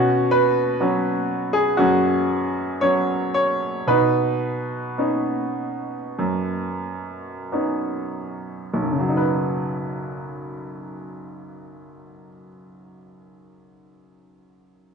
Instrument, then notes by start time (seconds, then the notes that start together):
grand piano
Already playing: B2 C#4 F#4
0.31 B4
0.80 F#3 B3 C#4
1.53 G#4
1.77 F#2 C#4 F#4
2.81 F#3 B3 C#4 C#5
3.34 C#5
3.87 B2 D#4 B4
4.98 B3 C#4 D#4
6.19 F#2
7.52 B3 C#4 D#4
8.74 B1
8.82 F#2
8.91 C#3
8.99 F#3
9.09 D#4
9.17 B4